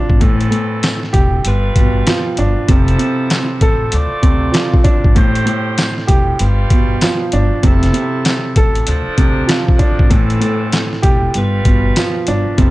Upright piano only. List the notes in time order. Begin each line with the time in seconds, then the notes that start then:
Already playing: C3 F3 D4
0.21 A2
0.51 A2
1.13 G4
1.77 B2
2.07 F3
2.38 D4
2.68 C3
2.98 C3
3.62 A4
4.23 C3
4.52 F3
4.84 D4
5.15 A2
5.45 A2
6.07 G4
6.72 B2
7.02 F3
7.33 D4
7.63 C3
7.93 C3
8.57 A4
9.17 C3
9.47 F3
9.79 D4
10.10 A2
10.40 A2
11.02 G4
11.67 B2
11.97 F3
12.28 D4
12.58 C3